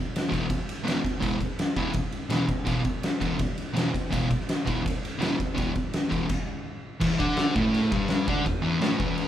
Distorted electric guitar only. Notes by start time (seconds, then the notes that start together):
0.28 E2 B2 E3
0.84 E2 B2 E3
1.20 E2 B2 E3
1.76 E2 B2 E3
2.29 E2 B2 E3
2.65 E2 B2 E3
3.20 E2 B2 E3
3.73 E2 B2 E3
4.10 E2 B2 E3
4.65 E2 B2 E3
5.18 E2 B2 E3
5.54 E2 B2 E3
6.09 E2 B2 E3
7.00 E2 E3
7.19 D3 D4
7.56 A2 A3
7.92 G2 G3
8.27 D3 D4
8.45 E2
8.62 E2 E3
8.79 A2 A3
8.97 E2 E3